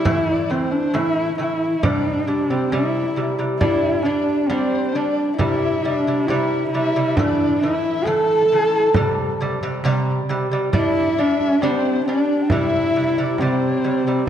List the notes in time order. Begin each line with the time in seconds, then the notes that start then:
Already playing: E4 E5
0.05 A2 E3, frame drum
0.31 D5
0.50 A2 E3 C4 C5, frame drum
0.71 D4, frame drum
0.94 A2 E3 E4 E5, frame drum
1.38 A2 E3 E4 G5
1.44 E5
1.77 E5
1.82 C3 G3 D4 D5, frame drum
2.27 C3 G3
2.49 C3 G3 C4 C5
2.71 C3 G3 E4 E5, frame drum
3.16 C3 G3
3.39 C3 G3
3.59 G3 D4 E4 E5, frame drum
4.02 G3 D4 D5, frame drum
4.28 frame drum
4.47 G3 C4 D4, frame drum
4.53 C5
4.93 G3 D4
4.97 D5
5.37 C3 G3 E4 E5, frame drum
5.82 C3 G3 D4
6.06 C3 G3, frame drum
6.26 C3 G3 E4 E5, frame drum
6.70 E4 E5
6.74 C3 G3
6.96 C3 G3
7.14 D4 D5, frame drum
7.19 A2 E3
7.59 A2 E4 E5, frame drum
7.63 E3
8.04 A2 E3 A4 A5, frame drum
8.52 A2 E3
8.94 C3 G3, frame drum
9.41 C3 G3
9.61 C3 G3, frame drum
9.84 C3 G3, frame drum
10.29 C3 G3
10.51 C3 G3
10.73 G3 D4 E4 D#5, frame drum
10.87 E5
11.17 G3 D4, frame drum
11.40 frame drum
11.61 G3 C4 D4 D5, frame drum
11.66 C5
12.05 G3 D4 D5
12.42 G5
12.49 C3 G3 E4 E5, frame drum
12.96 C3 G3
13.17 C3 G3 D5, frame drum
13.38 C3 G3 C4 C5, frame drum
13.84 C3 G3
14.07 C3 G3